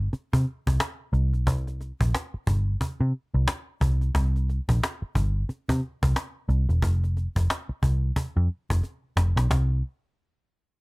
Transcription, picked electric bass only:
0.13 muted picked electric bass stroke
0.34 C3
0.67 C2
1.13 C2
1.33 B1
1.47 C2
2.01 A#1
2.34 muted picked electric bass stroke
2.47 G1
2.81 muted picked electric bass stroke
3.01 C3
3.34 C2
3.81 C2
4.15 C2
4.69 A#1
5.02 muted picked electric bass stroke
5.15 G1
5.49 muted picked electric bass stroke
5.69 C3
6.03 C2
6.49 C2
6.69 E1
6.82 F1
7.36 F1
7.69 muted picked electric bass stroke
7.83 C2
8.16 muted picked electric bass stroke
8.37 F2
8.70 F1
9.17 F1
9.36 B1
9.50 C2

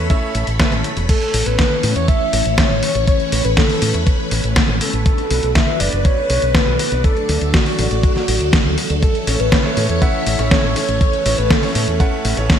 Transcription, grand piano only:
0.10 A3 C#4 E4 E5
0.60 A3 C#4 E4 B4
0.72 A3 C#4 E4 A4
9.27 A3 C#4 E4 C#5
9.64 A3 C#4 E4 C#5
10.02 A3 C#4 E4 F#5
10.39 A3 C#4 E4 C#5
10.76 A3 C#4 E4 C#5
11.26 A3 C#4 E4 C#5
11.63 A3 C#4 E4 C#5
12.00 A3 C#4 E4 F#5
12.37 A3 C#4 E4 C#5

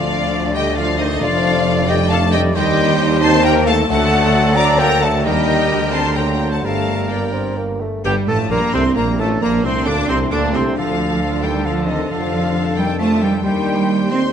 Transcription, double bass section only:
Already playing: D2
1.21 F1
2.55 D#2
3.89 D2
5.25 D#2
5.70 D2
6.64 G1
8.05 G1
8.28 A1
8.50 A#1
8.73 C2
8.96 A#1
9.18 A1
9.41 A#1
9.64 C2
9.87 D2
10.09 C2
10.31 D2
10.54 C2
10.77 D2
12.10 F2
13.44 D#2

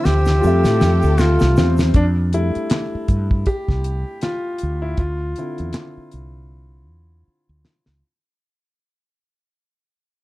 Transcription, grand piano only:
Already playing: D3 F3 A3 C4 E5
0.41 G3 A3 F4
0.45 C4 E5
1.58 C4
1.96 D4
2.34 G3 A3 E4
3.47 G4
4.23 F4
4.82 E4
4.99 F4
5.38 D3 C4 E4

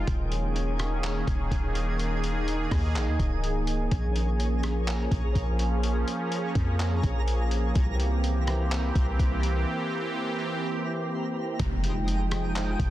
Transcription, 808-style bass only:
0.08 D#1
1.27 D#1
1.51 D#1
2.71 D#2
2.96 A#1
3.08 D#2
3.19 C#1
3.92 A#1
5.11 A#1
5.35 A#1
6.55 F2
7.03 A#1
7.76 C2
8.95 C2
9.19 C2
11.60 F1
12.79 F1

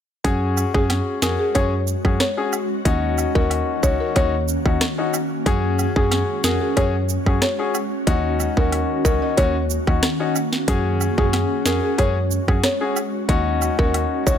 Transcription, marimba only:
0.74 G#4
1.22 A#4
1.39 G#4
1.55 C#5
2.20 C#5
3.35 A#4
3.83 C#5
4.00 A#4
4.16 C#5
5.96 G#4
6.44 A#4
6.61 G#4
6.77 C#5
7.42 C#5
8.57 A#4
9.05 A#4
9.22 D#5
9.37 C#5
11.18 G#4
11.66 A#4
11.83 G#4
11.98 C#5
12.64 C#5
13.79 A#4
14.27 C#5

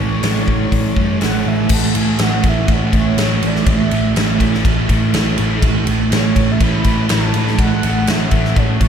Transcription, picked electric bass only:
0.00 A1
0.23 A1
0.72 A1
0.97 F#2
1.22 A1
1.47 A1
1.70 A1
1.95 A1
2.19 A1
2.44 A1
2.68 A1
2.93 A1
3.18 A1
3.43 A1
3.67 A1
3.92 A1
4.16 A1
4.40 A1
4.65 A1
4.90 A1
5.15 A1
5.39 A1
5.62 A1
5.87 A1
6.12 A1
6.37 A1
6.61 A1
6.85 A1
7.11 A1
7.35 A1
7.58 A1
7.84 A1
8.09 A1
8.32 A1
8.57 A1
8.81 A1

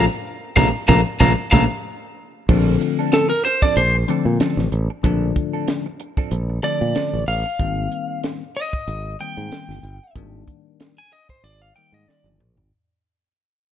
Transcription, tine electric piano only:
0.56 F3 A3 A#3
0.89 F3 A3 A#3
1.21 F3 A3 A#3
1.54 F3 A3 A#3
2.49 D3 F3 A3 C4
4.08 D3 F3 A3 C4
5.03 D3 F3 A3 D4
6.63 D3 F3 A3 D4
7.60 D#3 G3 A#3 C4
9.20 D#3 G3 A#3 C4
10.16 D#3 G3 A#3 D4
11.77 D#3 G3 A#3 D#4

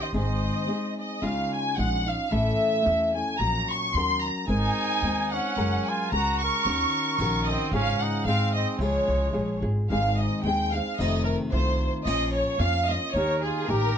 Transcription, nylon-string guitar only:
Already playing: D#3 A#3 C#4 G4
0.13 G#2 D#3 G#3 C4 D#4 G#4
0.67 G#3 C4 D#4 G#4
1.22 C#3 G#3 C#4 D#4 F4
1.77 G#3 C#4 D#4 F4
2.06 C#4 D#4 F4
2.31 A2 E3 A3 C#4 E4 A4
2.84 A3 C#4 E4 A4
3.14 A3 C#4 E4 A4
3.40 A#2 F#3 C#4 F#4 A#4
3.96 F#3 C#4 F#4 A#4
4.48 G#3 C4 D#4 A#4
5.03 G#3 C4 D#4 A#4
5.57 F#3 G#3 C#4 F#4 A#4
6.11 G#3 C#4 F#4 A#4
6.65 D#3 C#4 F#4 A#4
7.19 D#3 C#4 F#4 A#4
7.73 G#2 C#3 G#3 C#4 F4 G#4
8.26 G#3 C4 D#4 G#4
8.80 C#3 F3 G#3 F4 G#4
9.32 F3 G#3 F4 G#4
9.63 G#3 F4 G#4
9.90 G#2 D#3 G#3 C4 D#4 G#4
10.45 G#3 C4 D#4 G#4
10.73 G#3 C4 D#4 G#4
10.99 F2 C3 D#3 A3 C4 F4
11.53 D#3 A3 C4 F4
12.06 A#2 F3 A#3 C#4 F4
12.59 F3 A#3 C#4 F4
12.89 A#3 C#4 F4
13.15 D#3 A#3 D#4 G4
13.68 D#3 A#3 D#4 G4

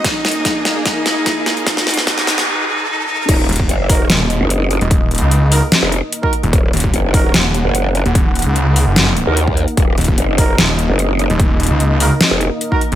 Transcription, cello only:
0.04 D#4
0.86 D#4
1.67 D#4
2.07 D#4
2.48 D#4
2.68 D#4
2.88 D#4
3.09 D#4

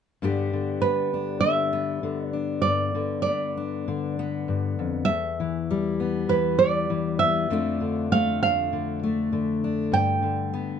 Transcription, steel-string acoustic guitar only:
0.22 G2 D3 B3 D4 G4
0.53 D3
0.83 B3
1.14 D4
1.43 D3
1.73 B3
2.03 D3
2.33 D4
2.65 G2
2.95 D3
3.26 B3
3.57 D4
3.88 D3
4.19 B3
4.48 G2
4.79 F2
5.08 E2
5.40 E3
5.71 G3
6.00 B3
6.29 E3
6.60 G3
6.90 E3
7.21 B3
7.50 F2 D3 A3 D4 F4
7.80 D3
8.12 A3
8.43 D4
8.73 D3
9.03 A3
9.32 D3
9.64 D4
9.92 G2
10.23 D3
10.54 B3

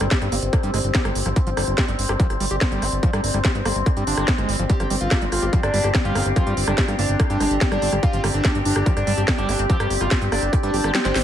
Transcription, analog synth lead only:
4.70 G4
5.01 F4
5.32 F4
5.63 D4
6.05 F4
6.36 F4
6.67 D4
6.99 D4
7.30 D4
7.72 D4
8.03 F4
8.34 D4
8.65 D4
8.97 D4
9.38 D4
9.70 G4
10.01 F4
10.32 D4
10.63 D4
11.05 C4

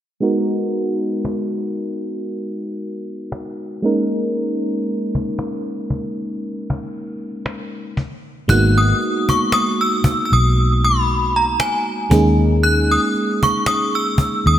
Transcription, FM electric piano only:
0.20 G#3 B3 D#4 F#4 A#4
3.82 G#3 A#3 C#4 D#4 A#4
8.48 G#3 A#3 B3 D#4 F#4
12.10 G#3 A#3 C#4 D#4 G#4

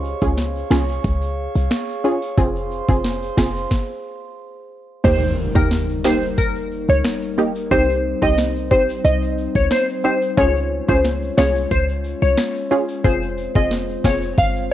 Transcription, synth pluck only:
5.05 C5
5.56 A#4
6.05 C5
6.38 A#4
6.90 C#5
7.71 C5
8.23 D#5
8.71 C5
9.05 D#5
9.56 C#5
9.72 C5
10.05 C5
10.38 C#5
10.89 C5
11.38 C#5
11.71 C5
12.22 C#5
13.04 C5
13.56 D#5
14.05 C#5
14.38 F5

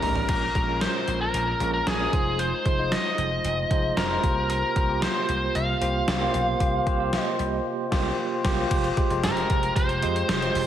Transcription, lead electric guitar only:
Already playing: A#4
0.29 A#4
0.81 C5
1.21 A#4
1.74 A#4
1.87 G#4
2.39 C5
2.92 D#5
3.97 A#4
4.50 A#4
5.03 C5
5.55 F5
7.20 D#5
9.24 A#4
9.77 C5
10.29 C5

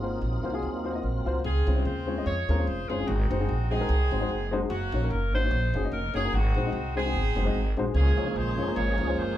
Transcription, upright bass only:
Already playing: G#1
0.22 A#1
0.44 C2
0.63 D#2
1.03 A#1
1.26 C2
1.44 C#2
1.67 C2
1.85 D#2
2.26 F2
2.49 D#2
2.67 F1
2.90 F#1
3.08 G#1
3.31 F#1
3.49 A#1
3.89 C2
4.11 G#1
4.29 F#1
4.70 F#1
4.92 A#1
5.10 F#1
5.33 G#1
5.51 A#1
5.74 F#1
5.92 F1
6.14 F#1
6.33 G#1
6.54 A#1
6.72 C2
7.13 G#1
7.36 F#1
7.54 G#1
7.77 A#1
7.94 C#2
8.17 C2
8.36 A#1
8.58 F#1
8.76 G#1
8.98 C#2
9.16 F#1

